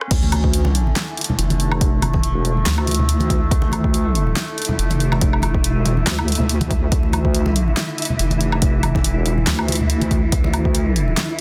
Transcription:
0.00 0.10 D3 medium
0.00 0.14 C#4 medium
0.00 cross-stick medium
0.11 0.95 D2 medium
0.11 11.41 D3 medium
0.11 6.94 A3 medium
0.11 11.41 E4 medium
0.11 kick loud
0.11 closed hi-hat medium
0.11 crash loud
0.23 muted conga medium
0.32 closed hi-hat medium
0.32 high conga loud
0.32 low woodblock medium
0.44 kick medium
0.54 closed hi-hat medium
0.65 muted conga medium
0.75 closed hi-hat medium
0.87 high conga medium
0.96 snare loud
0.96 clap loud
0.96 closed hi-hat medium
0.96 muted conga medium
1.17 closed hi-hat medium
1.21 closed hi-hat medium
1.24 closed hi-hat medium
1.30 low conga medium
1.39 2.22 F1 loud
1.39 closed hi-hat medium
1.39 muted conga medium
1.50 closed hi-hat soft
1.50 high conga loud
1.60 closed hi-hat medium
1.72 muted conga medium
1.72 low woodblock medium
1.81 kick loud
1.81 closed hi-hat medium
2.02 closed hi-hat medium
2.02 high conga loud
2.02 low woodblock medium
2.14 kick medium
2.14 muted conga medium
2.23 2.65 E1 loud
2.23 closed hi-hat medium
2.45 closed hi-hat medium
2.45 muted conga soft
2.57 high conga medium
2.66 3.50 D2 loud
2.66 snare loud
2.66 clap loud
2.66 closed hi-hat medium
2.78 low woodblock medium
2.87 closed hi-hat soft
2.87 muted conga medium
2.91 closed hi-hat medium
2.95 closed hi-hat medium
2.99 low conga medium
3.09 closed hi-hat medium
3.20 closed hi-hat soft
3.20 muted conga medium
3.20 high conga loud
3.30 kick medium
3.30 closed hi-hat medium
3.51 4.35 D2 medium
3.51 kick loud
3.51 closed hi-hat medium
3.62 muted conga medium
3.72 closed hi-hat medium
3.72 high conga loud
3.72 low woodblock medium
3.84 kick medium
3.93 closed hi-hat medium
3.93 muted conga medium
4.15 closed hi-hat medium
4.27 high conga medium
4.36 snare loud
4.36 clap loud
4.36 closed hi-hat medium
4.36 muted conga medium
4.58 closed hi-hat soft
4.62 closed hi-hat medium
4.65 closed hi-hat medium
4.65 low conga medium
4.70 muted conga medium
4.79 5.62 F1 loud
4.79 closed hi-hat medium
4.90 closed hi-hat soft
4.90 high conga loud
5.00 closed hi-hat medium
5.12 muted conga medium
5.12 low woodblock medium
5.21 kick loud
5.21 closed hi-hat medium
5.33 low woodblock medium
5.42 closed hi-hat soft
5.42 muted conga medium
5.42 high conga loud
5.42 low woodblock medium
5.55 kick medium
5.64 6.05 E1 loud
5.64 closed hi-hat medium
5.85 closed hi-hat medium
5.85 muted conga medium
5.97 high conga medium
6.07 6.90 D2 loud
6.07 snare loud
6.07 clap medium
6.07 closed hi-hat medium
6.19 muted conga medium
6.19 low woodblock medium
6.28 closed hi-hat soft
6.32 closed hi-hat medium
6.35 closed hi-hat medium
6.40 low conga medium
6.49 closed hi-hat medium
6.61 closed hi-hat soft
6.61 muted conga medium
6.61 high conga loud
6.71 kick medium
6.71 closed hi-hat medium
6.92 7.75 D2 loud
6.92 11.41 E3 medium
6.92 kick loud
6.92 closed hi-hat medium
7.03 muted conga medium
7.13 closed hi-hat medium
7.13 high conga loud
7.13 low woodblock medium
7.25 kick medium
7.35 closed hi-hat medium
7.46 muted conga medium
7.56 closed hi-hat medium
7.68 high conga medium
7.77 snare loud
7.77 clap medium
7.77 closed hi-hat medium
7.77 muted conga medium
7.98 closed hi-hat soft
8.02 closed hi-hat medium
8.05 closed hi-hat medium
8.10 low conga medium
8.19 9.03 F1 loud
8.19 closed hi-hat medium
8.19 muted conga medium
8.30 closed hi-hat soft
8.30 high conga loud
8.41 closed hi-hat medium
8.52 muted conga medium
8.52 low woodblock medium
8.62 kick loud
8.62 closed hi-hat medium
8.83 closed hi-hat medium
8.83 high conga medium
8.83 low woodblock medium
8.95 kick medium
8.95 muted conga medium
9.04 9.46 E1 loud
9.04 closed hi-hat medium
9.26 closed hi-hat medium
9.26 muted conga soft
9.38 high conga medium
9.47 10.31 D2 loud
9.47 snare loud
9.47 clap medium
9.47 closed hi-hat medium
9.59 low woodblock medium
9.68 closed hi-hat soft
9.68 muted conga medium
9.72 closed hi-hat medium
9.75 closed hi-hat medium
9.81 low conga medium
9.90 closed hi-hat medium
10.01 closed hi-hat soft
10.01 muted conga medium
10.01 high conga loud
10.11 kick medium
10.11 closed hi-hat medium
10.32 11.16 D2 medium
10.32 kick loud
10.32 closed hi-hat medium
10.44 muted conga medium
10.53 closed hi-hat medium
10.53 high conga medium
10.53 low woodblock medium
10.65 kick medium
10.75 closed hi-hat medium
10.75 muted conga medium
10.96 closed hi-hat medium
11.08 high conga medium
11.17 snare loud
11.17 clap medium
11.17 closed hi-hat medium
11.17 muted conga medium

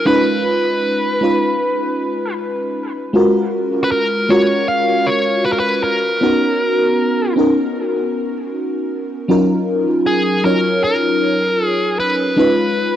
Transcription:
0.05 1.17 G#3 medium
0.05 1.17 C#4 medium
0.05 1.17 D#4 medium
0.05 1.18 F4 medium
0.05 2.34 B4 medium
0.05 1.18 B4 loud
1.21 3.09 G#3 medium
1.21 3.10 C#4 medium
1.21 3.10 D#4 medium
1.21 3.10 F4 medium
1.21 3.11 B4 medium
3.13 4.25 G#3 medium
3.13 4.25 C#4 medium
3.13 4.25 F4 medium
3.13 4.26 F#4 medium
3.13 4.26 A#4 loud
3.84 3.91 B4 medium
3.91 4.31 A#4 medium
4.29 6.17 G#3 medium
4.29 6.17 C#4 medium
4.29 6.18 F4 medium
4.29 6.18 F#4 medium
4.29 6.18 A#4 medium
4.29 4.66 C#5 medium
4.68 5.08 F5 loud
5.07 5.42 C#5 medium
5.45 5.52 B4 medium
5.52 5.59 A#4 medium
5.59 5.83 B4 medium
5.83 7.33 A#4 medium
6.21 7.32 B3 medium
6.21 7.33 C#4 medium
6.21 7.33 D#4 medium
6.21 7.33 F#4 medium
6.21 7.34 A#4 medium
7.36 9.24 B3 medium
7.36 9.25 C#4 medium
7.36 9.25 D#4 medium
7.36 9.26 F#4 medium
7.36 9.26 A#4 medium
9.28 10.40 F#3 medium
9.28 10.40 C#4 medium
9.28 10.40 D#4 medium
9.28 10.41 F4 medium
9.28 10.41 A#4 loud
10.06 10.45 G#4 medium
10.44 12.32 F#3 medium
10.44 12.32 C#4 medium
10.44 12.33 D#4 medium
10.44 12.33 F4 medium
10.44 10.83 A#4 medium
10.44 12.34 C#5 medium
10.84 11.66 A#4 medium
11.66 11.99 G#4 medium
12.00 12.96 B4 medium
12.36 12.96 G#3 medium
12.36 12.96 C#4 medium
12.36 12.96 D#4 medium
12.36 12.96 F4 medium
12.36 12.96 B4 loud

